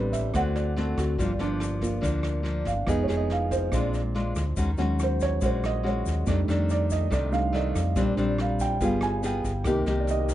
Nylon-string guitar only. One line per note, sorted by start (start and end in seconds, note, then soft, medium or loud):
0.00 0.33 A2 medium
0.00 0.31 G3 medium
0.00 0.32 C4 medium
0.00 0.32 D4 medium
0.35 1.17 D3 medium
0.35 0.73 A3 soft
0.35 0.73 C4 soft
0.35 0.74 F#4 medium
0.76 1.17 A3 medium
0.76 1.17 C4 medium
0.76 1.18 F#4 medium
1.19 2.02 G2 medium
1.19 1.31 F3 medium
1.19 1.31 A#3 soft
1.19 1.31 D4 medium
1.39 2.00 F3 medium
1.39 2.00 A#3 medium
1.39 2.00 D4 medium
2.01 2.85 D3 soft
2.01 2.41 F3 soft
2.01 2.42 A#3 medium
2.01 2.42 D4 medium
2.43 2.73 F3 soft
2.43 2.73 A#3 soft
2.43 2.73 D4 soft
2.87 3.70 F3 medium
2.87 3.06 B3 medium
2.87 3.06 D#4 soft
2.87 3.06 G#4 medium
3.08 3.69 B3 medium
3.08 3.69 D#4 medium
3.08 3.69 G#4 medium
3.72 4.55 A#2 medium
3.72 4.00 G#3 soft
3.72 4.00 D4 soft
3.72 4.00 F4 soft
4.15 4.43 G#3 soft
4.15 4.44 D4 soft
4.15 4.44 F4 soft
4.57 5.40 D#3 soft
4.57 4.70 G#3 medium
4.57 4.70 C#4 medium
4.57 4.70 F#4 medium
4.78 5.38 G#3 medium
4.78 5.39 C#4 medium
4.78 5.39 F#4 medium
5.41 6.24 A#2 soft
5.41 5.81 G#3 medium
5.41 5.81 C#4 medium
5.41 5.81 F#4 medium
5.83 6.25 G#3 medium
5.83 6.25 C#4 medium
5.83 6.25 F#4 medium
6.26 7.09 F2 medium
6.26 6.39 D#3 medium
6.26 6.40 A3 medium
6.26 6.40 D4 medium
6.48 7.08 D#3 medium
6.48 7.08 A3 medium
6.48 7.09 D4 medium
7.10 7.93 C3 medium
7.10 7.38 D#3 medium
7.10 7.38 A3 medium
7.10 7.39 D4 medium
7.53 7.82 D#3 medium
7.53 7.82 A3 medium
7.53 7.82 D4 medium
7.96 8.79 A#2 medium
7.96 8.14 G3 medium
7.96 8.14 C4 medium
7.96 8.15 D4 medium
8.17 8.77 G3 medium
8.17 8.78 C4 medium
8.17 8.78 D4 medium
8.81 9.64 G3 soft
8.81 9.20 B3 medium
8.81 9.20 F4 medium
8.81 9.20 G#4 medium
9.23 9.51 B3 medium
9.23 9.52 F4 medium
9.23 9.52 G#4 medium
9.66 10.34 C3 medium
9.66 9.83 A#3 medium
9.66 9.83 D#4 medium
9.66 9.84 G4 medium
9.87 10.34 A#3 medium
9.87 10.34 D#4 medium
9.87 10.34 G4 medium